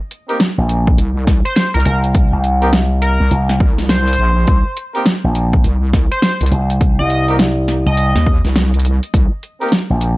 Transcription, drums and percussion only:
0.11 closed hi-hat medium
0.29 closed hi-hat soft
0.40 snare loud
0.40 closed hi-hat medium
0.69 closed hi-hat medium
0.69 shaker medium
0.87 kick loud
0.98 closed hi-hat medium
1.27 kick loud
1.27 snare medium
1.46 closed hi-hat soft
1.56 snare loud
1.56 closed hi-hat medium
1.75 closed hi-hat medium
1.80 closed hi-hat medium
1.85 closed hi-hat medium
1.85 shaker medium
2.04 closed hi-hat medium
2.15 kick loud
2.15 closed hi-hat medium
2.44 closed hi-hat medium
2.62 closed hi-hat soft
2.73 snare loud
2.73 closed hi-hat medium
3.02 closed hi-hat medium
3.02 shaker medium
3.31 closed hi-hat medium
3.49 snare medium
3.60 kick loud
3.78 snare soft
3.78 closed hi-hat soft
3.89 snare loud
3.89 closed hi-hat medium
4.07 closed hi-hat soft
4.13 closed hi-hat medium
4.18 shaker medium
4.47 kick loud
4.47 closed hi-hat medium
4.77 closed hi-hat medium
4.95 closed hi-hat soft
5.06 snare loud
5.06 closed hi-hat medium
5.35 closed hi-hat medium
5.35 shaker medium
5.53 kick loud
5.64 closed hi-hat medium
5.93 kick loud
5.93 snare medium
6.12 closed hi-hat soft
6.22 snare loud
6.22 closed hi-hat medium
6.41 closed hi-hat soft
6.46 closed hi-hat medium
6.52 closed hi-hat medium
6.52 shaker medium
6.70 closed hi-hat medium
6.81 kick loud
6.81 closed hi-hat medium
7.10 closed hi-hat medium
7.28 closed hi-hat soft
7.39 snare loud
7.39 closed hi-hat medium
7.68 snare soft
7.68 closed hi-hat medium
7.68 shaker medium
7.97 closed hi-hat medium
8.16 snare medium
8.26 kick loud
8.45 snare soft
8.45 closed hi-hat soft
8.56 snare loud
8.56 closed hi-hat medium
8.74 closed hi-hat soft
8.80 closed hi-hat medium
8.85 closed hi-hat medium
8.85 shaker medium
9.03 closed hi-hat medium
9.14 kick loud
9.14 closed hi-hat medium
9.43 closed hi-hat medium
9.61 closed hi-hat soft
9.69 snare loud
9.69 closed hi-hat soft
9.72 closed hi-hat medium
9.78 closed hi-hat soft
10.01 closed hi-hat medium
10.01 shaker medium

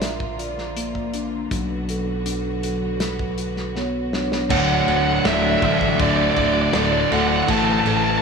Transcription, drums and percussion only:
0.02 snare medium
0.02 closed hi-hat medium
0.20 kick medium
0.39 closed hi-hat soft
0.58 snare soft
0.77 closed hi-hat medium
0.95 kick medium
1.14 closed hi-hat soft
1.51 kick medium
1.51 closed hi-hat medium
1.89 closed hi-hat medium
2.26 closed hi-hat medium
2.63 closed hi-hat soft
3.00 snare medium
3.00 closed hi-hat medium
3.19 kick medium
3.38 closed hi-hat soft
3.57 snare soft
3.76 snare soft
4.13 snare medium
4.32 snare medium
4.50 kick loud
4.50 crash loud
4.50 crash medium
4.88 crash medium
5.25 snare loud
5.25 crash medium
5.62 kick medium
5.62 crash medium
5.81 kick medium
6.00 kick loud
6.00 crash medium
6.36 kick medium
6.36 crash medium
6.73 snare loud
6.73 crash medium
7.12 crash medium
7.48 kick loud
7.48 crash loud
7.86 crash medium

